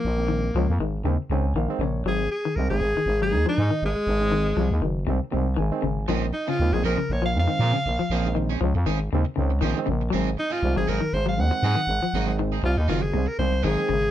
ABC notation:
X:1
M:4/4
L:1/16
Q:"Swing 16ths" 1/4=119
K:Abmix
V:1 name="Alto saxophone"
B,6 z8 z2 | A2 A2 B A4 A2 E3 A,2- | A,6 z8 z2 | z2 E F2 A B2 d f f6- |
f2 z12 z2 | z2 E F2 A B2 c f g6- | g2 z2 F E F A2 B c2 A4 |]
V:2 name="Clean electric guitar"
z16 | z16 | z16 | [F,CDA] z2 [CDA] z2 [F,CDA] z4 z [F,CA] z3 |
[F,CDA] z2 [CDA] z2 [CDA] z4 z [F,CDA] z3 | [G,CEA] z2 [CEA] z2 [G,CEA] z4 z [G,CEA] z3 | [G,CEA] z2 [CEA] z2 [G,CEA] z4 z [G,CEA] z3 |]
V:3 name="Tine electric piano"
z8 z2 a2 f2 d2 | z16 | z12 a4 | z16 |
z16 | z16 | z16 |]
V:4 name="Tine electric piano" clef=bass
z [E,A,C]2 z4 z [E,A,C] z [E,A,C] z2 [E,A,C] z2 | [E,A,C] z3 [E,A,C]2 z4 [E,A,E]2 z4 | z [E,A,C]2 z4 z [E,A,C] z [E,A,C] z2 [E,A,C] z2 | [E,A,C] z3 [E,A,C]2 z4 [E,A,C]2 z4 |
z [E,A,C]2 z4 z [E,A,C] z [E,A,C] z2 [E,A,C] z2 | [E,A,C] z3 [E,A,C]2 z4 [E,A,C]2 z4 | z [E,A,C]2 z4 z [E,A,C] z [E,A,C] z2 [E,A,C] z2 |]
V:5 name="Clean electric guitar" clef=bass
z2 E,2 F,2 E,2 D,2 D,2 E,2 D,2 | G,2 z E,2 z2 E,2 G,2 F,2 E,2 z | z2 E,2 F,2 E,2 C,2 C,2 E,2 D,2 | F,2 z D,2 F,2 D,2 F,2 E,2 D,2 F,- |
F, z E,2 F,2 E,2 D,2 D,2 E,2 D,2 | G,2 z3 G,2 E,2 G,2 z2 E,2 F,- | F, z E,2 z2 E,2 C,2 C,2 E,2 D,2 |]
V:6 name="FM bass" clef=bass
B,,,4 D,, F,, A,,,2 E,, z D,,2 B,,, z B,,,2 | A,,,2 z2 C,, A,,, A,,, A,,, A,,,2 E,, z A,, z A,,, A,,, | A,,,4 C,, E,, G,,,2 C,, z C,,2 A,,, z A,,,2 | B,,,2 z2 E,, B,,, B,,, B,,, B,,,2 F,, z B,, z B,,, B,,, |
B,,,4 D,, F,, A,,,2 E,, z D,,2 B,,, z B,,,2 | A,,,2 z2 C,, A,,, A,,, A,,, A,,,2 E,, z A,, z A,,, A,,, | A,,,4 C,, E,, G,,,2 C,, z C,,2 A,,, z A,,,2 |]